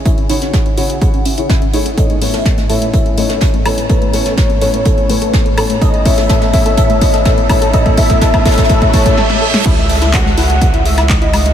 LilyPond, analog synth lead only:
\new Staff \with { instrumentName = "Analog synth lead" } { \time 4/4 \key a \lydian \tempo 4 = 125 e''8 fis''4 fis''8 fis''8 e''8 r4 | dis''8 e''4 e''8 e''8 dis''8 r4 | b'8 cis''4 cis''8 cis''8 b'8 r4 | dis''8 e''4 e''8 e''8 dis''8 r4 |
dis''8 e''4 e''8 e''8 cis''8 r4 | e''4 fis''8 fis''4 e''8 dis''4 | }